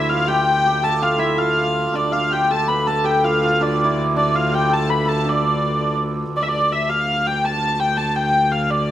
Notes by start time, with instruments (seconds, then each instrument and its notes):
Already playing: viola da gamba D2, hammered dulcimer D4 E4 G4 A4 B4
0.09 hammered dulcimer F4, hurdy-gurdy F5
0.28 hammered dulcimer G4, hurdy-gurdy G5
0.66 hammered dulcimer G4
0.83 hammered dulcimer A4, hurdy-gurdy A5
1.02 hammered dulcimer F4, hurdy-gurdy F5
1.18 hammered dulcimer E4, hurdy-gurdy E5
1.38 hammered dulcimer F4, hurdy-gurdy F5
1.93 viola da gamba D2, hammered dulcimer D4, hurdy-gurdy D5
2.12 hammered dulcimer F4, hurdy-gurdy F5
2.31 hammered dulcimer G4, hurdy-gurdy G5
2.51 hammered dulcimer A4, hurdy-gurdy A5
2.68 hammered dulcimer B4, hurdy-gurdy B5
2.87 hammered dulcimer A4, hurdy-gurdy A5
3.04 hammered dulcimer G4, hurdy-gurdy G5
3.24 hammered dulcimer F4, hurdy-gurdy F5
3.43 hammered dulcimer F4, hurdy-gurdy F5
3.61 hammered dulcimer D4, hurdy-gurdy D5
3.84 hammered dulcimer E4
4.16 hammered dulcimer D4, hurdy-gurdy D5
4.34 hammered dulcimer F4, hurdy-gurdy F5
4.52 hammered dulcimer G4, hurdy-gurdy G5
4.70 hammered dulcimer A4, hurdy-gurdy A5
4.89 hammered dulcimer B4, hurdy-gurdy B5
5.05 hammered dulcimer A4, hurdy-gurdy A5
5.25 hammered dulcimer D4
5.29 hurdy-gurdy D5
6.34 viola da gamba D2, hurdy-gurdy D5
6.43 hurdy-gurdy E5
6.48 hurdy-gurdy D5
6.73 hurdy-gurdy E5
6.89 hurdy-gurdy F5
7.27 hurdy-gurdy G5
7.45 hurdy-gurdy A5
7.80 hurdy-gurdy G5
7.97 hurdy-gurdy A5
8.16 hurdy-gurdy G5
8.51 hurdy-gurdy F5
8.71 hurdy-gurdy D5